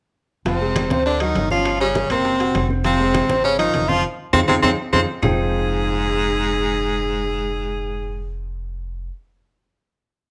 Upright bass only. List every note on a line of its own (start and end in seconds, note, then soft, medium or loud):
0.45 0.87 F1 medium
0.90 1.32 D2 medium
1.35 2.04 G1 medium
2.10 2.52 F#1 medium
2.55 3.24 F1 medium
3.29 3.71 G#1 medium
3.73 4.01 F1 medium
4.33 4.44 F2 medium
4.48 4.59 F2 medium
4.63 4.74 F2 medium
4.93 5.04 F2 medium
5.23 9.08 F1 medium